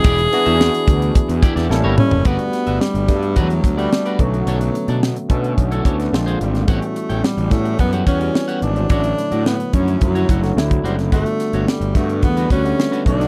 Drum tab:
HH |xxxx-xxxxxxx----|xxxx-xxxxxxx-xxx|xxxx-xxxxxxx-xxx|xxxx-xxxxxxx-xxx|
SD |--o-o------oo---|--o-o-o-----o---|----o------oo--o|----o-o-----o---|
T2 |--------------o-|----------------|----------------|----------------|
FT |---------------o|----------------|----------------|----------------|
BD |o-----o-o-o-----|o-----o-o-o---o-|------o-o-o-----|o-----o-o-o-----|

HH |xxxx-xxxxxxx-xxx|xxxx-xxxxxxx-xxx|
SD |--o-o------oo--o|--o-o-o-----o--o|
T2 |----------------|----------------|
FT |----------------|----------------|
BD |o-----o-o-o--o--|o-----o-o-o---o-|